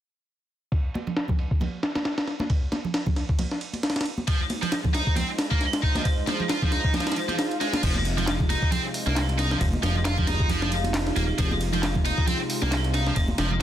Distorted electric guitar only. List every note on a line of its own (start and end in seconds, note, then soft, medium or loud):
4.28 4.37 F3 medium
4.63 4.70 F3 medium
4.94 5.15 D#4 medium
5.16 5.26 C4 medium
5.51 5.60 A#3 loud
5.83 5.94 D#4 medium
5.95 6.00 F3 loud
6.28 6.37 F3 loud
6.50 6.61 F4 medium
6.62 6.70 F3 medium
6.72 6.93 D#4 medium
6.94 7.06 F3 medium
7.07 7.14 F3 medium
7.29 7.33 F3 medium
7.61 7.72 G#3 loud
7.73 7.81 F4 medium
7.83 7.92 F3 loud
8.18 8.25 F3 medium
8.50 8.71 D#4 medium
8.72 8.81 C4 loud
9.07 9.16 A#3 loud
9.39 9.50 D#4 medium
9.51 9.55 F3 loud
9.83 9.92 F3 loud
10.05 10.17 F4 medium
10.18 10.25 F3 medium
10.27 10.49 D#4 medium
10.50 10.61 F3 medium
10.62 10.70 F3 medium
11.17 11.22 A#3 medium
11.39 11.48 F3 loud
11.73 11.81 F3 medium
12.05 12.27 D#4 medium
12.28 12.37 C4 loud
12.62 12.71 A#3 loud
12.94 13.06 D#4 medium
13.07 13.11 F3 loud
13.39 13.48 F3 loud